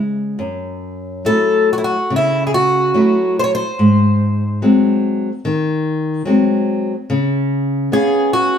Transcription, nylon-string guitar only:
0.00 0.35 C#3 medium
0.00 0.37 G#3 soft
0.39 1.22 F#2 soft
1.25 1.93 F#3 soft
1.25 1.94 A3 soft
1.25 1.93 E4 soft
2.10 2.92 C#3 medium
2.94 3.61 F#3 soft
2.94 3.61 A3 soft
2.94 3.62 E4 soft
3.79 4.59 G#2 medium
4.62 5.28 F#3 soft
4.62 5.28 G#3 soft
4.62 5.28 C4 soft
5.45 6.25 D#3 medium
6.25 6.92 F#3 medium
6.25 6.93 G#3 soft
6.25 6.93 C4 medium
7.10 7.89 C#3 medium
7.92 8.57 B3 soft
7.92 8.57 C#4 soft
7.92 8.57 F5 soft

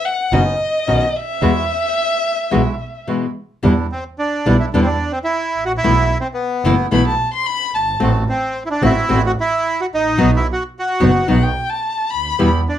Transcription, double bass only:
0.32 0.55 F#1 medium
0.88 1.11 B1 medium
1.41 1.65 E2 medium
2.53 2.76 B1 medium
3.64 3.87 E2 loud
4.46 4.69 B1 medium
4.74 4.97 E2 medium
5.56 5.82 A1 medium
5.83 6.06 B1 loud
6.64 6.88 F#1 medium
6.92 7.15 B1 medium
7.74 7.99 G1 medium
8.00 8.23 A1 loud
8.82 9.05 A1 loud
9.11 9.33 A1 medium
9.92 10.19 A1 medium
10.19 10.42 B1 loud
11.02 11.25 F#1 loud
11.29 11.52 B1 loud
12.12 12.38 D2 medium
12.39 12.62 E2 loud

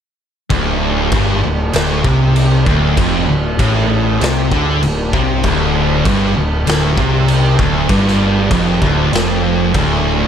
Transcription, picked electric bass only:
0.50 1.08 D1 loud
1.12 1.41 G1 medium
1.44 1.72 D1 medium
1.74 2.03 D1 medium
2.05 2.62 C2 loud
2.67 2.95 D1 medium
2.98 3.26 F1 loud
3.28 3.57 D1 medium
3.59 4.17 A1 medium
4.21 4.49 C2 loud
4.52 4.80 D2 loud
4.82 5.11 D1 medium
5.14 5.42 C2 medium
5.44 6.01 D1 loud
6.05 6.34 G1 loud
6.36 6.65 D1 medium
6.66 6.95 D1 loud
6.97 7.55 C2 loud
7.59 7.88 D1 loud
7.90 8.47 G1 loud
8.51 8.80 F1 loud
8.82 9.11 D1 loud
9.12 9.70 F1 loud
9.74 10.28 D1 loud

